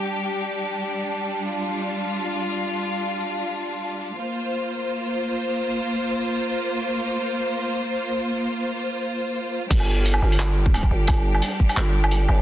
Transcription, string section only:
0.00 4.14 G3 medium
0.00 4.14 D4 medium
0.00 1.40 G4 medium
1.43 4.16 F4 medium
4.18 9.66 A#3 medium
4.18 9.66 F4 medium
4.18 9.66 C5 medium
9.70 12.42 G3 medium
9.70 12.42 D4 medium
9.70 12.42 G4 medium

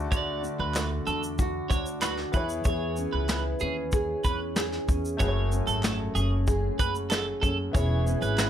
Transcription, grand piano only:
0.00 2.29 A3 medium
0.00 2.30 D4 medium
0.00 2.30 F#4 medium
0.00 2.31 D5 medium
2.32 4.83 B3 medium
2.32 4.84 E4 medium
2.32 4.85 G#4 medium
2.36 4.86 C#5 medium
5.17 7.69 A3 medium
5.17 7.70 F#4 medium
5.17 7.70 G#4 medium
5.21 5.27 B4 medium
5.28 7.74 C#5 medium
7.72 8.50 B3 medium
7.72 8.50 E4 medium
7.72 8.50 G#4 medium
7.76 8.50 C#5 medium

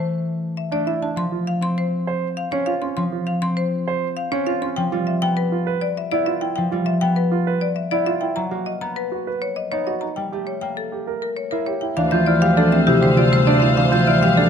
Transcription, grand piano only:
0.72 0.91 D4 medium
0.87 1.06 E4 medium
1.02 1.22 D4 soft
1.32 1.51 F4 soft
2.07 2.27 C5 medium
2.53 2.72 C#4 medium
2.67 2.87 F4 medium
2.82 3.02 C#4 medium
3.12 3.32 F4 medium
3.88 4.07 C5 medium
4.32 4.51 C#4 medium
4.47 4.66 F4 medium
4.62 4.81 C#4 medium
4.92 5.11 F4 medium
5.52 5.71 F4 medium
5.67 5.86 B4 medium
6.12 6.31 E4 medium
6.27 6.47 F4 medium
6.42 6.61 E4 medium
6.71 6.91 F4 medium
7.32 7.51 F4 medium
7.47 7.67 B4 medium
7.92 8.11 E4 medium
8.06 8.26 F4 medium
8.22 8.41 E4 medium
8.51 8.71 F#4 soft
9.12 9.31 F#4 soft
9.27 9.47 B4 medium
9.72 9.92 D#4 medium
9.87 10.07 F#4 medium
10.02 10.22 D#4 soft
10.32 10.52 G4 soft
10.92 11.12 G4 soft
11.07 11.27 A#4 soft
11.52 11.72 E4 medium
11.67 11.87 G4 soft
11.82 12.02 E4 soft
11.98 12.17 D4 medium
12.12 12.32 F4 medium
12.27 12.47 E4 medium
12.42 12.61 G4 medium
12.57 12.76 D4 medium
12.72 12.92 C4 medium
12.87 13.07 E4 medium
13.01 13.21 G4 medium
13.17 13.36 F4 medium
13.47 13.66 D4 medium
13.62 13.81 E4 medium
13.77 13.96 D4 medium
13.92 14.11 F4 medium
14.07 14.26 E4 medium
14.22 14.41 G4 medium
14.37 14.49 D4 medium

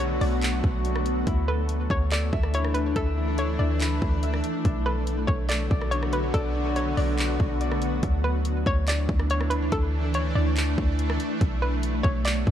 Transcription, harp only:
1.27 2.53 E4 medium
1.48 2.11 A4 medium
2.11 3.38 A4 medium
2.33 2.95 E5 loud
2.54 3.17 E4 medium
2.96 3.59 E5 loud
3.17 3.80 E4 medium
3.38 4.86 A4 medium
3.59 4.23 E5 medium
3.81 6.42 E4 medium
4.23 5.96 E5 medium
4.65 5.91 D4 loud
4.86 5.49 A4 medium
5.49 6.76 A4 loud
5.70 6.33 D5 medium
5.92 6.55 D4 medium
6.34 6.97 D5 loud
6.55 7.18 D4 medium
6.77 8.96 A4 medium
6.97 7.60 D5 medium
7.18 9.98 D4 medium
7.61 9.45 D5 medium

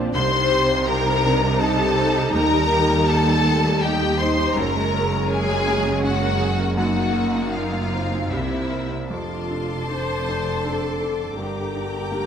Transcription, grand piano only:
0.00 0.10 A#1 medium
0.00 0.17 C4 medium
0.00 0.16 D4 medium
0.00 0.17 C5 medium
0.14 2.30 C2 medium
0.32 0.61 C4 medium
0.51 0.80 G4 medium
0.69 0.98 C4 medium
0.87 1.17 G4 medium
1.05 1.35 C4 medium
1.24 1.42 D4 medium
1.42 1.72 C4 medium
1.61 1.90 D#4 medium
1.79 2.08 G4 medium
1.98 2.27 C5 medium
2.17 2.35 G4 medium
2.34 4.52 D#2 medium
2.53 2.82 G3 medium
2.72 3.01 G4 medium
2.90 3.19 G3 medium
3.09 3.38 G4 medium
3.27 3.57 G3 medium
3.46 3.64 A3 medium
3.64 3.94 G3 medium
3.85 4.13 D#4 medium
4.02 4.31 G4 medium
4.21 4.50 D#4 medium
4.39 4.57 G4 medium
4.57 6.75 F#2 medium
4.76 5.05 G#3 medium
4.94 5.23 A#4 medium
5.11 5.41 G#3 medium
5.30 5.59 A#4 medium
5.49 5.78 G#3 medium
5.68 5.86 A#3 medium
5.86 6.15 G#3 medium
6.04 6.34 C#4 medium
6.22 6.52 A#4 medium
6.40 6.70 G#4 medium
6.59 6.78 A#4 medium
6.78 8.28 F#2 medium
6.97 7.28 A#3 medium
7.16 7.47 A#4 medium
7.35 7.67 A#3 soft
7.55 7.86 A#4 medium
7.73 8.05 A#3 medium
7.93 8.13 C4 soft
8.12 8.32 A#3 soft
8.31 9.08 C2 medium
8.50 8.83 C4 soft
8.70 9.03 A#4 soft
8.91 9.11 C4 soft
9.10 9.49 F2 soft
9.50 9.86 D4 soft
9.50 9.86 A4 soft
9.89 10.24 C4 soft
9.89 10.24 D4 soft
9.89 10.25 A4 soft
10.28 10.62 D4 soft
10.28 10.62 A4 soft
10.64 10.98 C4 soft
10.64 10.98 D4 soft
10.64 10.98 A4 soft
11.01 11.34 D4 soft
11.01 11.34 A4 soft
11.38 11.73 G2 soft
11.75 12.08 D4 soft
11.75 12.08 G4 soft
12.11 12.26 A#3 soft
12.11 12.26 D4 soft
12.11 12.26 G4 soft

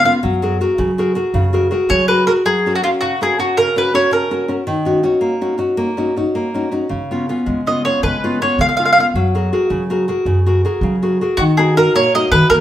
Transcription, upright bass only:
0.24 0.59 F#2 medium
0.79 1.14 F#3 medium
1.34 1.70 F#2 medium
1.90 2.26 F#3 medium
6.91 7.27 C#3 medium
7.47 7.83 C#3 medium
8.03 8.39 C#3 medium
8.59 8.95 C#3 medium
9.14 9.50 F#2 medium
9.70 10.06 F#3 medium
10.25 10.62 F#2 medium
10.81 11.18 F#3 medium
11.38 11.94 D#3 medium
11.94 12.19 A#2 loud
12.32 12.43 D#3 medium
12.50 12.61 D#3 medium

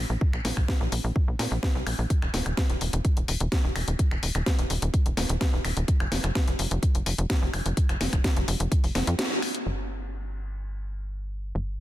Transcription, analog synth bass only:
0.10 0.18 A#1 medium
0.33 0.41 A#1 medium
0.45 0.53 A#1 loud
0.57 0.65 A#1 medium
0.81 0.88 A#1 medium
0.92 1.00 A#1 loud
1.04 1.12 A#1 medium
1.28 1.36 A#1 medium
1.39 1.48 A#2 loud
1.52 1.59 A#1 medium
1.75 1.83 C2 medium
1.87 1.95 A#1 medium
1.99 2.07 A#1 medium
2.22 2.30 D#1 medium
2.34 2.42 D#1 loud
2.46 2.54 D#1 medium
2.70 2.77 D#1 medium
2.81 2.89 D#1 loud
2.93 3.01 D#1 medium
3.17 3.25 D#1 medium
3.28 3.37 D#1 loud
3.41 3.48 D#1 medium
3.64 3.72 D#1 medium
3.76 3.84 D#1 medium
3.88 3.96 D#1 medium
4.11 4.19 D#1 medium
4.23 4.31 D#1 loud
4.35 4.43 D#1 medium
4.59 4.66 D#1 medium
4.70 4.78 D#1 loud
4.82 4.90 D#1 medium
5.06 5.14 D#1 medium
5.17 5.26 D#1 loud
5.30 5.37 D#1 medium
5.53 5.61 D#1 medium
5.65 5.73 D#1 loud
5.77 5.85 D#1 medium
6.00 6.08 F1 medium
6.12 6.20 F1 loud
6.24 6.32 F1 medium
6.48 6.55 F1 medium
6.59 6.67 F1 loud
6.71 6.79 F1 medium
6.95 7.03 F1 medium
7.06 7.15 F1 loud
7.18 7.26 F1 medium
7.42 7.50 F1 medium
7.54 7.62 F1 loud
7.66 7.74 F1 medium
7.89 7.97 F1 medium
8.01 8.09 F1 medium
8.13 8.21 F1 medium
8.37 8.44 F1 medium
8.48 8.56 F1 loud
8.60 8.68 F1 medium
8.84 8.92 F1 medium
8.95 9.03 F1 loud
9.07 9.15 F2 medium
9.66 11.53 G1 medium
11.55 11.80 G1 medium

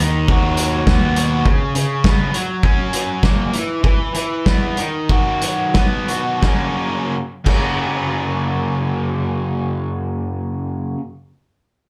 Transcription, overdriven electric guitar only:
0.00 1.45 D#3 medium
0.29 1.16 F#4 medium
0.59 1.46 F#3 medium
0.87 1.45 B3 medium
1.17 1.45 F#4 medium
1.47 1.75 C#3 medium
1.76 2.34 C#3 medium
2.05 2.33 B3 medium
2.34 2.92 F#3 medium
2.63 3.53 C#4 medium
2.93 3.53 F#3 medium
3.23 3.53 A#3 medium
3.54 3.82 E3 medium
3.83 4.14 E3 medium
4.15 4.77 E3 medium
4.46 4.78 B3 medium
4.78 6.42 D#3 medium
5.09 6.07 F#4 medium
5.42 6.42 F#3 medium
5.76 6.43 B3 medium
6.08 6.43 F#4 medium
6.41 7.15 F#2 medium
6.41 7.15 C#3 medium
6.41 7.15 F#3 medium
6.41 7.15 A#3 medium
6.45 7.15 C#4 medium
7.45 10.95 F#2 medium
7.45 10.96 C#3 medium
7.45 10.97 F#3 medium
7.45 10.98 A#3 medium
7.49 10.99 C#4 medium

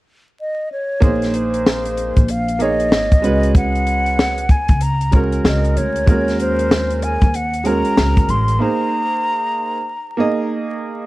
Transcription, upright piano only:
1.00 2.17 A#3 medium
1.00 2.18 D#4 medium
1.00 2.18 G#4 medium
1.00 2.19 C5 medium
2.59 3.23 A#3 medium
2.59 3.23 D#4 medium
2.59 3.24 G#4 medium
2.59 3.24 C#5 medium
3.22 4.38 G#3 medium
3.22 4.39 C#4 medium
3.22 4.39 F#4 medium
3.22 4.40 B4 medium
5.11 5.99 G#3 medium
5.11 5.99 C#4 medium
5.11 6.00 F#4 medium
5.11 6.00 A#4 medium
6.06 7.22 G#3 medium
6.06 7.23 C#4 medium
6.06 7.23 F#4 medium
6.06 7.24 A#4 medium
7.64 8.51 G#3 medium
7.64 8.52 C#4 medium
7.64 8.52 F#4 medium
7.64 8.53 A#4 medium
8.59 9.75 A#3 medium
8.59 9.76 D#4 medium
8.59 9.76 G#4 medium
8.59 9.77 C5 medium
10.17 11.04 A#3 medium
10.17 11.05 D#4 medium
10.17 11.05 G#4 medium
10.17 11.06 D#5 medium

